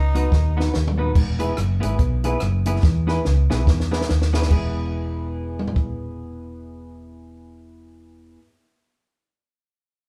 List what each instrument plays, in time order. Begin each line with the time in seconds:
Already playing: fingered electric bass C#2, tenor saxophone D#4
0.15 clean electric guitar B3 D#4 F#4 B4, upright piano D#4 F#4 B4, closed hi-hat
0.32 fingered electric bass D#2, muted clean electric guitar stroke, kick, snare
0.56 clean electric guitar B3 D#4 F#4 B4, upright piano D#4 F#4 B4, snare
0.74 fingered electric bass D#2, muted clean electric guitar stroke, snare
0.87 floor tom
0.98 clean electric guitar B3 D#4 F#4 B4, upright piano D#4 F#4 B4
1.15 fingered electric bass E1, kick, crash
1.39 clean electric guitar B3 E4 G#4 B4, upright piano E4 G#4 B4, closed hi-hat
1.57 fingered electric bass F#1, cross-stick, closed hi-hat
1.80 fingered electric bass G#1, clean electric guitar B3 E4 G#4 B4, upright piano E4 G#4 B4, closed hi-hat
1.98 fingered electric bass B1, muted clean electric guitar stroke, kick, closed hi-hat
2.24 clean electric guitar B3 E4 G#4 B4, upright piano E4 G#4 B4, closed hi-hat
2.40 fingered electric bass F#1, cross-stick, closed hi-hat
2.66 clean electric guitar B3 E4 G#4 B4, upright piano E4 G#4 B4, closed hi-hat
2.83 fingered electric bass E2, kick, snare
3.07 clean electric guitar B3 E4 G#4 B4, upright piano E4 G#4 B4, snare
3.25 fingered electric bass C#2, snare
3.50 fingered electric bass B1, clean electric guitar B3 E4 G#4 B4, upright piano E4 G#4 B4, snare
3.67 fingered electric bass E2, muted clean electric guitar stroke, kick, snare
3.80 snare
3.91 clean electric guitar B3 E4 G#4 B4, upright piano E4 G#4 B4, snare
4.01 snare
4.09 fingered electric bass D#2, snare
4.22 snare
4.33 clean electric guitar B3 E4 G#4 B4, upright piano E4 G#4 B4, snare
4.42 snare
4.48 fingered electric bass E1, clean electric guitar B3 E4 G#4, upright piano E4 G#4 B4, kick, crash
4.53 clean electric guitar B4
5.59 mid tom
5.67 floor tom
5.76 kick